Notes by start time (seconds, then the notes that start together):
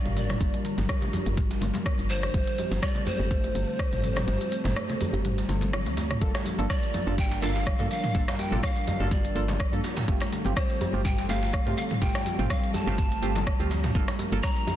Already playing: G3 D4 F4 A#4 D5
0.05 G1, closed hi-hat, mid tom, djembe tone, cabasa
0.16 A#3 D5, mid tom, open hi-hat, cabasa
0.30 cross-stick, closed hi-hat, mid tom, djembe slap, high conga, cabasa
0.41 G1 A#3, kick, closed hi-hat, cabasa
0.54 closed hi-hat, djembe tone, cabasa
0.65 D3, open hi-hat, cabasa
0.78 G1, closed hi-hat, djembe slap, high conga, cabasa
0.89 G3, kick, cross-stick, closed hi-hat, djembe tone, cabasa
1.02 closed hi-hat, low conga, cabasa
1.13 F3, open hi-hat, high conga, djembe bass, cabasa
1.26 G1, closed hi-hat, djembe bass, cabasa
1.37 G3, kick, closed hi-hat, mid tom, djembe tone, cabasa
1.51 closed hi-hat, djembe slap, cabasa
1.61 G1 A#3, open hi-hat, low conga, cabasa
1.74 closed hi-hat, high conga, djembe tone, low conga, cabasa
1.86 A#3, kick, cross-stick, closed hi-hat, cabasa
1.99 G1, closed hi-hat, cabasa
2.10 D3 C5, open hi-hat, cabasa
2.23 cross-stick, closed hi-hat, djembe tone, cabasa
2.34 G1 G3 C4 A4, kick, closed hi-hat, cabasa
2.47 closed hi-hat, cabasa
2.58 F3, open hi-hat, djembe tone, cabasa
2.71 G1, closed hi-hat, djembe slap, high conga, cabasa
2.82 G3 D5, kick, cross-stick, closed hi-hat, cabasa
2.95 closed hi-hat, low conga, cabasa
3.06 A3 C5, open hi-hat, djembe tone, high conga, djembe bass, cabasa
3.19 G1, djembe bass, cabasa
3.31 A3, kick, closed hi-hat, cabasa
3.44 closed hi-hat, djembe tone, cabasa
3.55 G1 D3, open hi-hat, cabasa
3.68 cabasa
3.79 G3, kick, cross-stick, closed hi-hat, high conga, cabasa
3.92 G1, closed hi-hat, mid tom, djembe tone, cabasa
4.04 F3, mid tom, open hi-hat, cabasa
4.16 cross-stick, closed hi-hat, mid tom, djembe slap, high conga, cabasa
4.27 G1 G3, closed hi-hat, djembe tone, cabasa
4.41 closed hi-hat, cabasa
4.52 A3, open hi-hat, cabasa
4.64 G1, closed hi-hat, mid tom, djembe slap, high conga, low conga, cabasa
4.76 A3, cross-stick, closed hi-hat, djembe tone, cabasa
4.89 closed hi-hat, low conga, cabasa
5.01 D3, open hi-hat, high conga, djembe bass, cabasa
5.13 G1, closed hi-hat, djembe tone, djembe bass, cabasa
5.25 G3, closed hi-hat, mid tom, cabasa
5.38 closed hi-hat, djembe slap, cabasa
5.49 G1 D3, open hi-hat, low conga, cabasa
5.61 closed hi-hat, high conga, djembe tone, low conga, cabasa
5.73 F4, cross-stick, closed hi-hat, high tom, cabasa
5.86 D2, closed hi-hat, high tom, cabasa
5.97 A3, open hi-hat, djembe slap, djembe tone, cabasa
6.11 cross-stick, closed hi-hat, mid tom, cabasa
6.21 G1 G3 A#3 D4 F4 A4 A#4, kick, closed hi-hat, cabasa
6.35 cross-stick, closed hi-hat, djembe slap, cabasa
6.45 F3, open hi-hat, djembe tone, cabasa
6.58 G1 A#3 D4 F4 A4, closed hi-hat, high conga, cabasa
6.70 G3 D5, kick, cross-stick, closed hi-hat, cabasa
6.83 closed hi-hat, cabasa
6.94 A#3, open hi-hat, djembe tone, high conga, djembe bass, cabasa
7.07 G1 A#3 D4 F4 A4, djembe bass, cabasa
7.18 A#3 G5, kick, closed hi-hat, mid tom, djembe tone, cabasa
7.31 closed hi-hat, djembe slap, cabasa
7.42 G1 D3 A#3 D4 F4 A4 F5, open hi-hat, djembe slap, djembe tone, cabasa
7.56 djembe slap, cabasa
7.66 G3, kick, cross-stick, closed hi-hat, high conga, cabasa
7.79 G2 A#3 D4 F4 A4, closed hi-hat, low conga, cabasa
7.91 F3 F5, open hi-hat, cabasa
8.04 closed hi-hat, mid tom, high conga, cabasa
8.15 G1 G3 A#3 D4 F4 A4, kick, closed hi-hat, mid tom, cabasa
8.28 cross-stick, closed hi-hat, djembe slap, cabasa
8.39 A#3 G5, open hi-hat, djembe tone, cabasa
8.51 G1 A#3 D4 F4 A4, closed hi-hat, mid tom, high conga, djembe tone, cabasa
8.63 A#3 F5, kick, cross-stick, closed hi-hat, cabasa
8.76 closed hi-hat, cabasa
8.87 D3, open hi-hat, high conga, djembe tone, djembe bass, cabasa
9.00 G1 A#3 D4 F4 A4, low conga, djembe bass, cabasa
9.11 G3 D5, kick, closed hi-hat, low conga, cabasa
9.25 closed hi-hat, cabasa
9.35 G1 F3 A#3 D4 F4 A4, open hi-hat, cabasa
9.48 closed hi-hat, djembe slap, high conga, low conga, cabasa
9.60 G3, kick, cross-stick, closed hi-hat, cabasa
9.72 G2 A#3 D4 F4 A4, closed hi-hat, high conga, cabasa
9.84 A#3, open hi-hat, djembe slap, djembe tone, cabasa
9.97 closed hi-hat, mid tom, djembe slap, cabasa
10.08 G1 A3 C4 F4 G4 A4, kick, closed hi-hat, cabasa
10.20 cross-stick, closed hi-hat, djembe slap, cabasa
10.32 D3, open hi-hat, djembe tone, cabasa
10.45 G1 A3 C4 F4 G4, closed hi-hat, high conga, cabasa
10.56 G3 C5, kick, cross-stick, closed hi-hat, cabasa
10.70 closed hi-hat, cabasa
10.81 F3, open hi-hat, high conga, djembe tone, djembe bass, cabasa
10.93 G1 A3 C4 F4 G4, djembe bass, cabasa
11.05 G3 G5, kick, closed hi-hat, mid tom, djembe tone, cabasa
11.18 closed hi-hat, djembe slap, cabasa
11.29 G1 A3 C4 F4 G4 F5, open hi-hat, djembe slap, djembe tone, cabasa
11.43 djembe slap, cabasa
11.53 A3, kick, cross-stick, closed hi-hat, high conga, cabasa
11.66 G2 A3 C4 F4 G4, closed hi-hat, low conga, cabasa
11.77 D3 F5, open hi-hat, cabasa
11.91 closed hi-hat, mid tom, high conga, cabasa
12.02 G1 G3 A3 C4 F4 G4 G5, kick, closed hi-hat, mid tom, cabasa
12.15 cross-stick, closed hi-hat, djembe slap, cabasa
12.26 F3, open hi-hat, djembe tone, cabasa
12.39 G1 A3 C4 F4 G4, closed hi-hat, mid tom, djembe tone, high conga, cabasa
12.50 G3 F5, kick, cross-stick, closed hi-hat, cabasa
12.64 closed hi-hat, cabasa
12.74 A3 A5, open hi-hat, djembe tone, high conga, djembe bass, cabasa
12.87 G1 A3 C4 F4 G4, low conga, djembe bass, cabasa
12.98 A3, kick, closed hi-hat, low conga, cabasa
13.12 closed hi-hat, cabasa
13.22 G1 D3 A3 C4 F4 G4, open hi-hat, cabasa
13.35 closed hi-hat, djembe slap, high conga, low conga, cabasa
13.47 G3, kick, cross-stick, closed hi-hat, cabasa
13.59 D2 A3 C4 F4 G4, closed hi-hat, high conga, cabasa
13.70 F3, open hi-hat, djembe slap, djembe tone, cabasa
13.84 closed hi-hat, mid tom, djembe slap, cabasa
13.95 G1 G3 A#3 D4 F4 A4 A#4, kick, closed hi-hat, cabasa
14.08 cross-stick, closed hi-hat, djembe slap, cabasa
14.19 A#3, open hi-hat, djembe tone, cabasa
14.32 G1 A#3 D4 F4 A4, closed hi-hat, high conga, cabasa
14.43 A#3 A#5, kick, cross-stick, closed hi-hat, cabasa
14.57 closed hi-hat, cabasa
14.67 D3, open hi-hat, djembe tone, high conga, djembe bass, cabasa